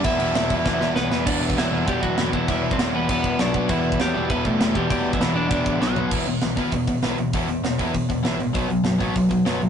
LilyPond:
<<
  \new Staff \with { instrumentName = "Lead electric guitar" } { \time 4/4 \key e \minor \tempo 4 = 198 <e' e''>2. <b b'>4 | <d' d''>4 <e e'>4 <g g'>8 <fis fis'>4 <e e'>8 | <e e'>8. <c' c''>8. <b b'>8 <b b'>4 <d' d''>4 | <e e'>4 <g g'>4 <b b'>8 <a a'>4 <g g'>8 |
<g g'>8. <e e'>8. <d' d''>8 <d' d''>4 <fis fis'>4 | r1 | r1 | r1 | }
  \new Staff \with { instrumentName = "Distorted electric guitar" } { \clef bass \time 4/4 \key e \minor <e g b e'>8 <e g b e'>8 <e g b e'>8 <e g b e'>8 <e g b e'>8 <e g b e'>8 <e g b e'>8 <e g b e'>8 | <e g b e'>4 <e g b e'>8 <e g b e'>8 <e g b e'>4 <e g b e'>8 <e g b e'>8 | <e g b e'>4 <e g b e'>8 <e g b e'>8 <e g b e'>4 <b, fis b fis'>8 <b, fis b fis'>8 | <e g b e'>4 <e g b e'>8 <e g b e'>8 <e g b e'>4 <e g b e'>8 <e g b e'>8 |
<e g b e'>4 <e g b e'>8 <e g b e'>8 <e g b e'>4 <b, fis b fis'>8 <b, fis b fis'>8 | <e b e'>8 <e b>8 <e b>8 <e b e'>8 <e b>8 <e b>8 <e b e'>8 <e b>8 | <e b e'>8 <e b>8 <e b>8 <e b e'>8 <e b>8 <e b>8 <e b e'>8 <e b>8 | <b, fis b>8 <b, fis>8 <b, fis>8 <b, fis b>8 <b, fis>8 <b, fis>8 <b, fis b>8 <b, fis>8 | }
  \new Staff \with { instrumentName = "Overdriven electric guitar" } { \clef bass \time 4/4 \key e \minor <e, b, e>8 <e, b, e>8 <e, b, e>8 <e, b, e>8 <e, b, e>8 <e, b, e>8 <e, b, e>8 <e, b, e>8 | <e, b, e>4 <e, b, e>8 <e, b, e>8 <e, b, e>4 <e, b, e>8 <e, b, e>8 | <e, b, e>4 <e, b, e>8 <e, b, e>8 <e, b, e>4 <b, fis b>8 <b, fis b>8 | <e, b, e>4 <e, b, e>8 <e, b, e>8 <e, b, e>4 <e, b, e>8 <e, b, e>8 |
<e, b, e>4 <e, b, e>8 <e, b, e>8 <e, b, e>4 <b, fis b>8 <b, fis b>8 | <e, b, e>8 <e, b,>8 <e, b,>8 <e, b, e>8 <e, b,>8 <e, b,>8 <e, b, e>8 <e, b,>8 | <e, b, e>8 <e, b,>8 <e, b,>8 <e, b, e>8 <e, b,>8 <e, b,>8 <e, b, e>8 <e, b,>8 | <b, fis b>8 <b, fis>8 <b, fis>8 <b, fis b>8 <b, fis>8 <b, fis>8 <b, fis b>8 <b, fis>8 | }
  \new Staff \with { instrumentName = "Picked electric bass" } { \clef bass \time 4/4 \key e \minor e,,8 e,,8 e,,8 e,,8 e,,8 e,,8 b,,8 e,,8 | e,,8 e,,8 e,,8 e,,8 e,,8 e,,8 e,,8 e,,8 | e,,8 e,,8 e,,8 e,,8 e,,8 e,,8 b,,8 b,,8 | e,,8 e,,8 e,,8 e,,8 e,,8 e,,8 e,,8 e,,8 |
e,,8 e,,8 e,,8 e,,8 e,,8 a,,8 b,,8 b,,8 | e,,8 e,,8 b,,8 d,8 e,,4 b,,8 d,8 | e,,8 e,,8 e,,8 e,,8 e,,8 e,8 b,,8 a,,8 | b,,8 b,,8 fis,,8 a,,8 b,,4 fis,,8 d,8 | }
  \new DrumStaff \with { instrumentName = "Drums" } \drummode { \time 4/4 <cymc bd>8 cymc8 <cymc sn>8 <cymc bd>8 <bd sn>8 sn8 sn8 sn8 | <cymc bd>8. bd16 <cymc sn>4 <cymc bd>8 bd8 <cymc sn>8 bd8 | <cymc bd>8. bd16 <cymc sn>4 <cymc bd>8 bd8 <cymc sn>8 bd8 | <cymc bd>8. bd16 <cymc sn>4 <cymc bd>8 bd8 <cymc sn>8 bd8 |
<cymc bd>8. bd16 <cymc sn>4 <cymc bd>8 bd8 sn8 tomfh8 | <cymc bd>8 hho8 <hho sn>8 <hho bd>8 <hho bd>8 <hho bd>8 <hho sn>8 hho8 | <hho bd>8 hho8 <hho sn>8 <hho bd>8 <hho bd>8 <hho bd>8 <hho sn>8 hho8 | <hho bd>8 hho8 <hho sn>8 <hho bd>8 <hho bd>8 <hho bd>8 <hho sn>8 hho8 | }
>>